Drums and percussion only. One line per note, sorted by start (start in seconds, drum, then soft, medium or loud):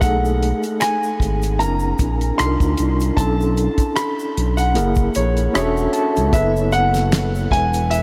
0.02 kick loud
0.02 closed hi-hat medium
0.02 shaker medium
0.25 shaker soft
0.43 closed hi-hat medium
0.63 closed hi-hat soft
0.63 shaker soft
0.81 finger snap medium
0.81 cross-stick medium
0.81 closed hi-hat medium
0.81 shaker medium
1.03 shaker soft
1.20 kick medium
1.20 closed hi-hat medium
1.20 shaker soft
1.42 closed hi-hat medium
1.42 shaker soft
1.60 closed hi-hat medium
1.60 shaker soft
1.79 shaker soft
1.98 kick medium
1.98 closed hi-hat medium
1.98 shaker soft
2.21 closed hi-hat soft
2.21 shaker soft
2.39 finger snap medium
2.39 cross-stick loud
2.39 closed hi-hat medium
2.39 shaker medium
2.60 kick loud
2.60 closed hi-hat soft
2.60 shaker soft
2.77 closed hi-hat medium
2.77 shaker soft
3.00 closed hi-hat soft
3.00 shaker soft
3.17 kick loud
3.17 closed hi-hat medium
3.17 shaker medium
3.41 shaker soft
3.57 closed hi-hat medium
3.57 shaker soft
3.78 kick medium
3.78 cross-stick soft
3.78 closed hi-hat soft
3.78 shaker soft
3.96 finger snap medium
3.96 cross-stick loud
3.96 closed hi-hat medium
3.96 shaker medium
4.19 shaker soft
4.37 closed hi-hat medium
4.58 closed hi-hat medium
4.58 shaker soft
4.75 closed hi-hat medium
4.75 shaker medium
4.95 kick medium
4.95 shaker soft
5.14 closed hi-hat medium
5.14 shaker soft
5.37 closed hi-hat soft
5.37 shaker soft
5.55 finger snap medium
5.55 cross-stick loud
5.55 closed hi-hat medium
5.55 shaker medium
5.77 shaker soft
5.93 closed hi-hat medium
5.93 shaker soft
6.16 closed hi-hat soft
6.16 shaker soft
6.33 kick loud
6.33 closed hi-hat medium
6.33 shaker medium
6.56 shaker soft
6.72 closed hi-hat medium
6.72 shaker soft
6.94 snare soft
6.94 closed hi-hat medium
6.94 shaker soft
7.12 finger snap medium
7.12 snare loud
7.12 closed hi-hat medium
7.12 shaker medium
7.35 shaker soft
7.51 kick medium
7.51 closed hi-hat medium
7.73 closed hi-hat medium
7.73 shaker medium
7.91 closed hi-hat medium
7.91 shaker medium